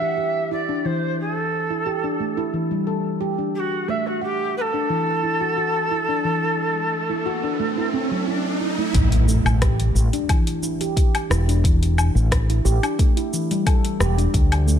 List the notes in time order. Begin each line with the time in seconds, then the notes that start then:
Already playing: E5
0.01 G4
0.17 G4
0.51 E4 D5
0.69 D4
0.85 E3 C5
1.19 G#4
1.32 A4
1.70 E4
1.86 G4
2.04 D4
2.20 A3
2.37 E4
2.54 E3
2.71 G3
2.87 A4
3.21 G4
3.38 D4
3.55 G4, riser
3.59 F#4
3.88 A3 E5
4.06 F#4
4.21 G4 F#5
4.57 A4 B4
4.74 D4
4.90 E3
5.24 E4
5.41 F#4
5.57 F#4
5.91 E4
6.09 D4
6.25 E3
7.10 E4
7.26 F#4
7.43 D4
7.59 A3
7.77 E4
7.93 C4
8.11 F#3
8.27 E4
8.61 E4
8.78 A3
8.94 A1, kick, closed hi-hat, impact, cabasa
9.12 closed hi-hat, cabasa
9.28 A3, cabasa
9.45 A1, cabasa, low woodblock
9.62 G4, kick, cross-stick, closed hi-hat, cabasa
9.80 closed hi-hat, cabasa
9.95 A1, cabasa
10.13 D4, closed hi-hat, cabasa
10.29 E3, kick, closed hi-hat, cabasa, low woodblock
10.47 closed hi-hat, cabasa
10.63 E4, cabasa
10.81 G4, closed hi-hat, cabasa
10.97 G4, kick, closed hi-hat, cabasa
11.15 closed hi-hat, cabasa, low woodblock
11.30 E1 E4, cross-stick, cabasa
11.48 D4, closed hi-hat, cabasa
11.64 E3, kick, closed hi-hat, cabasa
11.83 closed hi-hat, cabasa
11.98 cabasa, low woodblock
12.15 A1, cabasa
12.32 kick, cross-stick, closed hi-hat, cabasa
12.50 E4, closed hi-hat, cabasa
12.65 A1 G4, cabasa
12.83 D4, closed hi-hat, cabasa, low woodblock
12.99 A3, kick, closed hi-hat, cabasa
13.17 E4, closed hi-hat, cabasa
13.33 E3, cabasa
13.51 G3, closed hi-hat, cabasa
13.66 A4, kick, closed hi-hat, cabasa, low woodblock
13.85 closed hi-hat, cabasa
14.00 E1 G4, cross-stick, cabasa
14.18 D4, closed hi-hat, cabasa
14.34 D2, kick, closed hi-hat, cabasa
14.52 closed hi-hat, cabasa, low woodblock
14.67 A3, cabasa